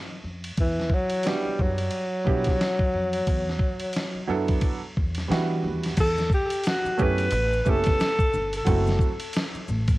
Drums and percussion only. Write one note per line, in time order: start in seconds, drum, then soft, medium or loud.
0.44 ride medium
0.57 kick medium
0.57 ride medium
0.80 snare soft
0.90 kick medium
1.10 ride medium
1.23 snare loud
1.23 hi-hat pedal soft
1.23 ride medium
1.59 kick medium
1.78 ride soft
1.91 ride medium
2.27 kick medium
2.44 kick medium
2.44 snare soft
2.44 ride medium
2.61 snare loud
2.61 hi-hat pedal soft
2.61 ride soft
2.79 kick medium
3.13 ride medium
3.27 kick medium
3.27 ride medium
3.50 snare soft
3.59 kick medium
3.80 ride medium
3.93 snare medium
3.93 hi-hat pedal soft
3.93 ride medium
4.48 kick medium
4.48 ride soft
4.61 kick loud
4.61 ride medium
4.97 kick medium
5.15 snare soft
5.15 ride medium
5.32 snare loud
5.32 hi-hat pedal soft
5.32 ride soft
5.83 snare soft
5.83 ride medium
5.97 kick loud
5.97 crash medium
5.97 ride medium
5.97 maracas medium
6.18 snare soft
6.18 high conga medium
6.18 maracas soft
6.30 kick loud
6.30 maracas soft
6.50 ride medium
6.50 maracas soft
6.63 snare loud
6.63 hi-hat pedal medium
6.63 ride medium
6.63 maracas medium
6.86 maracas medium
6.99 kick medium
6.99 low conga medium
6.99 maracas soft
7.18 ride soft
7.18 maracas soft
7.31 ride medium
7.31 maracas medium
7.53 maracas soft
7.66 kick medium
7.66 low conga medium
7.66 maracas soft
7.84 kick medium
7.84 snare soft
7.84 ride medium
7.84 high conga medium
7.84 maracas soft
8.00 snare loud
8.00 hi-hat pedal soft
8.00 ride medium
8.00 maracas medium
8.19 kick loud
8.19 maracas soft
8.33 low conga medium
8.33 maracas soft
8.53 ride medium
8.53 maracas soft
8.67 kick loud
8.67 ride medium
8.67 maracas medium
8.87 snare soft
8.87 high conga medium
8.87 maracas soft
8.99 kick medium
8.99 maracas soft
9.20 ride medium
9.20 maracas soft
9.33 snare loud
9.33 hi-hat pedal medium
9.33 ride medium
9.33 maracas medium
9.55 maracas soft
9.68 low conga medium
9.68 maracas soft
9.88 kick medium
9.88 ride soft
9.88 maracas soft